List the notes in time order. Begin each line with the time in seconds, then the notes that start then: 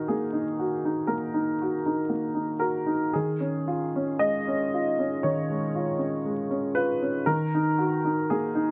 Already playing: D#3 D#4 F#4 A#4
0.08 A#3 G#4
0.33 D#4
0.59 F#4
0.85 D#4
1.07 A#3 A#4
1.34 D#4
1.61 F#4
1.86 D#4
2.10 A#3
2.35 D#4
2.60 F#4 A#4
2.86 D#4
3.13 D#3 G#4
3.40 C#4
3.68 F4
3.96 C#4
4.19 G#3 D#5
4.48 C#4
4.74 F4
4.99 C#4
5.23 D#3 C#5
5.50 G#3
5.75 F4
5.98 C#4
6.25 G#3
6.50 C#4
6.75 F4 B4
7.02 C#4
7.26 D#3 A#4
7.55 D#4
7.78 F#4
8.05 D#4
8.30 A#3 G#4
8.55 D#4